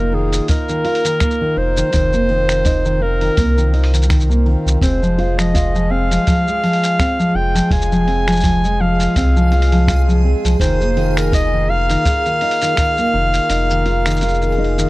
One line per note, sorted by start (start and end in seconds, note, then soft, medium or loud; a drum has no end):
0.00 0.40 F1 loud
0.00 4.79 D#3 medium
0.00 0.11 A#3 medium
0.00 1.91 A#3 medium
0.00 4.79 F4 medium
0.00 0.16 A#4 loud
0.12 0.47 D#3 medium
0.12 0.49 G#4 medium
0.32 open hi-hat soft
0.32 shaker medium
0.48 0.67 D#4 medium
0.48 1.59 A#4 loud
0.48 kick loud
0.48 open hi-hat medium
0.48 shaker medium
0.69 0.83 D#3 medium
0.69 shaker soft
0.84 1.03 F4 medium
0.84 open hi-hat soft
0.95 open hi-hat medium
1.04 1.19 D#3 medium
1.04 open hi-hat soft
1.04 shaker medium
1.20 1.39 A#3 medium
1.20 finger snap medium
1.20 kick loud
1.20 shaker medium
1.31 shaker soft
1.41 1.55 D#3 medium
1.57 1.83 F1 loud
1.57 1.75 D#4 medium
1.57 3.04 C5 loud
1.76 1.92 D#3 medium
1.76 open hi-hat soft
1.76 shaker medium
1.93 3.30 F1 loud
1.93 2.11 D#3 medium
1.93 4.79 C4 medium
1.93 kick medium
1.93 open hi-hat medium
1.93 shaker medium
2.13 2.28 A#3 medium
2.13 shaker soft
2.29 2.64 D#3 medium
2.29 open hi-hat soft
2.49 finger snap medium
2.49 open hi-hat soft
2.49 shaker medium
2.65 2.83 D#4 medium
2.65 kick loud
2.65 open hi-hat medium
2.65 shaker medium
2.85 3.00 D#3 medium
2.85 shaker soft
3.01 3.19 F4 medium
3.01 4.10 A#4 loud
3.21 3.36 D#3 medium
3.21 open hi-hat soft
3.37 4.56 C2 medium
3.37 3.56 A#3 medium
3.37 kick loud
3.37 open hi-hat medium
3.37 shaker medium
3.57 3.72 D#3 medium
3.57 shaker soft
3.73 3.92 D#4 medium
3.73 open hi-hat soft
3.84 open hi-hat medium
3.93 4.08 D#3 medium
3.93 open hi-hat soft
3.93 shaker medium
4.02 open hi-hat soft
4.02 shaker medium
4.09 4.28 D#3 medium
4.09 finger snap medium
4.09 kick loud
4.09 open hi-hat medium
4.09 shaker medium
4.20 shaker soft
4.30 4.44 A#3 medium
4.30 shaker soft
4.46 4.80 D#3 medium
4.46 open hi-hat soft
4.66 4.77 C2 medium
4.66 shaker medium
4.81 6.18 F1 loud
4.81 10.57 F3 medium
4.81 10.57 G#3 medium
4.81 5.00 C4 medium
4.81 10.57 G#4 medium
4.81 14.89 G#4 medium
4.81 5.40 C5 medium
4.81 kick loud
4.81 open hi-hat medium
4.81 shaker medium
5.02 5.17 F3 medium
5.02 shaker soft
5.18 5.37 F4 medium
5.18 open hi-hat soft
5.38 5.53 F3 medium
5.38 5.92 D#5 medium
5.38 finger snap medium
5.38 open hi-hat soft
5.38 shaker medium
5.54 5.73 F4 medium
5.54 kick medium
5.54 open hi-hat medium
5.54 shaker medium
5.75 5.89 F3 medium
5.75 shaker soft
5.90 6.09 C4 medium
5.90 7.37 F5 loud
6.11 6.25 F3 medium
6.11 open hi-hat soft
6.11 shaker medium
6.27 6.45 F3 medium
6.27 kick loud
6.27 open hi-hat medium
6.27 shaker medium
6.47 6.61 G#3 medium
6.47 shaker soft
6.63 6.98 F3 medium
6.63 open hi-hat soft
6.73 open hi-hat soft
6.83 open hi-hat soft
6.83 shaker medium
6.99 7.17 C4 medium
6.99 finger snap medium
6.99 kick medium
6.99 open hi-hat medium
6.99 shaker medium
7.19 7.33 F3 medium
7.19 shaker soft
7.35 7.61 F1 loud
7.35 7.53 F4 medium
7.35 7.71 G5 loud
7.55 7.69 F3 medium
7.55 open hi-hat soft
7.55 shaker medium
7.71 9.08 F1 loud
7.71 7.89 F4 medium
7.71 8.82 G#5 loud
7.71 kick loud
7.71 open hi-hat medium
7.81 shaker medium
7.92 8.06 F3 medium
7.92 shaker soft
8.07 8.25 C4 medium
8.07 open hi-hat soft
8.27 8.42 F3 medium
8.27 finger snap medium
8.27 open hi-hat soft
8.27 shaker soft
8.32 shaker soft
8.36 shaker soft
8.40 8.62 F3 medium
8.40 kick medium
8.40 open hi-hat medium
8.40 shaker medium
8.44 shaker medium
8.64 8.78 G#3 medium
8.64 shaker soft
8.80 9.14 F3 medium
8.80 9.16 F5 loud
9.00 open hi-hat soft
9.00 shaker medium
9.16 10.34 C2 loud
9.16 9.34 C4 medium
9.16 10.21 F5 medium
9.16 kick loud
9.16 open hi-hat medium
9.16 shaker medium
9.36 9.50 F3 medium
9.36 shaker soft
9.52 9.70 F4 medium
9.52 open hi-hat soft
9.62 open hi-hat medium
9.72 9.87 F3 medium
9.72 open hi-hat soft
9.87 10.06 F4 medium
9.87 finger snap medium
9.87 kick loud
9.87 open hi-hat medium
9.87 shaker medium
10.08 10.22 F3 medium
10.08 shaker soft
10.24 10.42 C4 medium
10.44 10.56 C2 medium
10.44 10.59 F3 medium
10.44 open hi-hat soft
10.44 shaker medium
10.60 11.97 F1 loud
10.60 10.79 D#3 medium
10.60 14.89 D#3 medium
10.60 14.89 A#3 medium
10.60 14.89 F4 medium
10.60 11.19 C5 medium
10.60 kick medium
10.60 open hi-hat medium
10.60 shaker medium
10.81 10.95 A#3 medium
10.81 shaker soft
10.97 11.31 D#3 medium
10.97 open hi-hat soft
11.17 11.33 A#4 medium
11.17 finger snap medium
11.17 open hi-hat soft
11.17 shaker medium
11.32 11.51 D#4 medium
11.32 11.71 D#5 loud
11.32 kick loud
11.32 open hi-hat medium
11.32 shaker medium
11.53 11.67 D#3 medium
11.69 11.87 F4 medium
11.69 14.89 F5 loud
11.89 12.04 D#3 medium
11.89 open hi-hat soft
11.89 shaker medium
12.05 12.23 F4 medium
12.05 kick medium
12.05 open hi-hat medium
12.05 shaker medium
12.26 12.40 D#3 medium
12.26 shaker soft
12.41 12.60 D#4 medium
12.41 open hi-hat soft
12.51 open hi-hat medium
12.61 12.76 D#3 medium
12.61 open hi-hat soft
12.61 shaker medium
12.69 open hi-hat soft
12.77 12.96 D#3 medium
12.77 finger snap medium
12.77 kick medium
12.77 open hi-hat medium
12.77 shaker medium
12.97 13.12 A#3 medium
12.97 shaker soft
13.13 13.40 F1 loud
13.13 13.48 D#3 medium
13.34 open hi-hat soft
13.34 shaker medium
13.49 14.86 F1 loud
13.49 13.68 D#4 medium
13.49 open hi-hat medium
13.49 shaker medium
13.70 13.85 D#3 medium
13.70 shaker soft
13.86 14.04 F4 medium
13.86 open hi-hat soft
14.06 14.20 D#3 medium
14.06 finger snap medium
14.06 open hi-hat soft
14.06 shaker medium
14.10 shaker medium
14.16 shaker soft
14.21 14.40 F4 medium
14.21 open hi-hat medium
14.21 shaker medium
14.28 shaker soft
14.34 shaker soft
14.42 14.57 D#3 medium
14.42 open hi-hat soft
14.42 shaker soft
14.52 open hi-hat soft
14.58 14.76 D#4 medium
14.64 open hi-hat soft
14.78 14.89 D#3 medium
14.78 open hi-hat soft
14.78 shaker medium